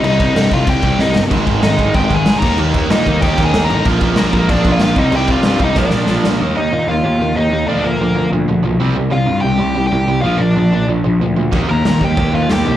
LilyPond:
<<
  \new Staff \with { instrumentName = "Lead electric guitar" } { \time 4/4 \key ees \major \tempo 4 = 188 <ees' ees''>4. <f' f''>8 <g' g''>4 <ees' ees''>8. r16 | r4 <ees' ees''>4 \tuplet 3/2 { <g' g''>4 <aes' aes''>8~ <aes' aes''>8 <bes' bes''>4 } | r4 <ees' ees''>4 \tuplet 3/2 { <g' g''>4 <aes' aes''>8~ <aes' aes''>8 <bes' bes''>4 } | r4 <bes bes'>4 \tuplet 3/2 { <d' d''>4 <f' f''>8 } <f' f''>8 <ees' ees''>8 |
<g' g''>8 <f' f''>4 <ees' ees''>8 <d' d''>4. r8 | r8 <ees' ees''>4 <f' f''>4. <ees' ees''>4 | <d' d''>8 <bes bes'>4. r2 | r8 <f' f''>4 <g' g''>4. <g' g''>4 |
<f' f''>8 <d' d''>4. r2 | r8 <bes' bes''>4 <g' g''>4 <f' f''>8 <g' g''>4 | }
  \new Staff \with { instrumentName = "Distorted electric guitar" } { \time 4/4 \key ees \major <c g c'>2.~ <c g c'>8 r8 | <aes, ees aes>2.~ <aes, ees aes>8 <ees bes ees'>8~ | <ees bes ees'>2.~ <ees bes ees'>8 r8 | <bes, f bes>2.~ <bes, f bes>8 <c g c'>8~ |
<c g c'>2 <bes, f bes>2 | r1 | r1 | r1 |
r1 | <ees bes ees'>4 <ees bes ees'>8 <ees bes ees'>8 <ees bes ees'>4 <ees bes ees'>8 <ees bes ees'>8 | }
  \new Staff \with { instrumentName = "Distorted electric guitar" } { \clef bass \time 4/4 \key ees \major <c g c'>8 <c g c'>8 <c g c'>8 <c g c'>8 <c g c'>8 <c g c'>8 <c g c'>8 <c g c'>8 | <aes, ees aes>8 <aes, ees aes>8 <aes, ees aes>8 <aes, ees aes>8 <aes, ees aes>8 <aes, ees aes>8 <aes, ees aes>8 <ees bes ees'>8 | <ees bes ees'>8 <ees bes ees'>8 <ees bes ees'>8 <ees bes ees'>8 <ees bes ees'>8 <ees bes ees'>8 <ees bes ees'>8 <ees bes ees'>8 | <bes, f bes>8 <bes, f bes>8 <bes, f bes>8 <bes, f bes>8 <bes, f bes>8 <bes, f bes>8 <bes, f bes>8 <c g c'>8 |
<c g c'>8 <c g c'>8 <c g c'>8 <c g c'>8 <bes, f bes>8 <bes, f bes>8 <bes, f bes>8 <bes, f bes>8 | <ees bes ees'>8 <ees bes>8 <ees bes>8 <ees bes>8 <ees bes>8 <ees bes>8 <ees bes>8 <ees bes>8 | <bes, f bes>8 <bes, f>8 <bes, f>8 <bes, f>8 <bes, f>8 <bes, f>8 <bes, f>8 <c g c'>8 | <c g>8 <c g>8 <c g>8 <c g>8 <c g>8 <c g>8 <c g>8 <c g>8 |
<bes, f bes>8 <bes, f>8 <bes, f>8 <bes, f>8 <bes, f>8 <bes, f>8 <bes, f>8 <bes, f>8 | <ees bes ees'>8 <ees bes>8 <ees bes>8 <ees bes>8 <ees bes>8 <ees bes>8 <ees bes>8 <ees bes>8 | }
  \new Staff \with { instrumentName = "Overdriven electric guitar" } { \clef bass \time 4/4 \key ees \major r1 | <aes, ees aes>8 <aes, ees aes>8 <aes, ees aes>8 <aes, ees aes>8 <aes, ees aes>8 <aes, ees aes>8 <aes, ees aes>8 <ees bes ees'>8 | <ees bes ees'>8 <ees bes ees'>8 <ees bes ees'>8 <ees bes ees'>8 <ees bes ees'>8 <ees bes ees'>8 <ees bes ees'>8 <ees bes ees'>8 | <bes, f bes>8 <bes, f bes>8 <bes, f bes>8 <bes, f bes>8 <bes, f bes>8 <bes, f bes>8 <bes, f bes>8 <c g c'>8 |
<c g c'>8 <c g c'>8 <c g c'>8 <c g c'>8 <bes, f bes>8 <bes, f bes>8 <bes, f bes>8 <bes, f bes>8 | <ees bes ees'>8 <ees bes>8 <ees bes>8 <ees bes>8 <ees bes>8 <ees bes>8 <ees bes>8 <ees bes>8 | <bes, f bes>8 <bes, f>8 <bes, f>8 <bes, f>8 <bes, f>8 <bes, f>8 <bes, f>8 <c g c'>8 | <c g>8 <c g>8 <c g>8 <c g>8 <c g>8 <c g>8 <c g>8 <c g>8 |
<bes, f bes>8 <bes, f>8 <bes, f>8 <bes, f>8 <bes, f>8 <bes, f>8 <bes, f>8 <bes, f>8 | <ees bes ees'>8 <ees bes>8 <ees bes>8 <ees bes>8 <ees bes>8 <ees bes>8 <ees bes>8 <ees bes>8 | }
  \new Staff \with { instrumentName = "Picked electric bass" } { \clef bass \time 4/4 \key ees \major c,4 g,8 c,8 c,8 c,8 c,8 g,,8 | aes,,8 aes,,8 aes,,8 aes,,8 aes,,8 aes,,8 aes,,8 ees,8 | ees,4 bes,8 ees,8 ees,8 ees,8 ees,8 a,,8 | bes,,8 bes,,8 bes,,8 bes,,8 bes,,8 bes,,8 bes,,8 c,8 |
c,4 g,8 c,8 bes,,8 bes,,8 bes,,8 bes,,8 | ees,8 ees,8 bes,8 ees,8 ees,8 ees,8 ees,8 ees,8 | d,8 d,8 d,4 d,8 d,8 b,,8 c,8 | c,8 c,8 g,8 c,8 c,8 c,8 c,8 c,8 |
bes,,8 bes,,8 bes,,4 bes,,8 bes,,8 d,8 d,8 | ees,8 ees,8 bes,8 ees,8 ees,8 ees,8 ees,8 c,8 | }
  \new DrumStaff \with { instrumentName = "Drums" } \drummode { \time 4/4 cymc8 <cymc bd>8 <cymc sn>8 <cymc bd>8 <cymc bd>8 <cymc bd>8 sn8 sn8 | <cymc bd>8 <cymc bd>8 <cymc sn>8 <cymc bd>8 <cymc bd>8 <cymc bd>8 <cymc sn>8 <cymc bd>8 | cymc8 <cymc bd>8 <cymc sn>8 <cymc bd>8 <cymc bd>8 <cymc bd>8 <cymc sn>8 cymc8 | <cymc bd>8 <cymc bd>8 <cymc sn>8 <cymc bd>8 <cymc bd>8 <cymc bd>8 <cymc sn>8 <cymc bd>8 |
cymc8 <cymc bd>8 <cymc sn>8 <cymc bd>8 <bd sn>8 sn8 sn8 sn8 | r4 r4 r4 r4 | r4 r4 r4 r4 | r4 r4 r4 r4 |
r4 r4 r4 r4 | <cymc bd>4 <cymc sn>8 bd8 <cymc bd>4 <cymc sn>4 | }
>>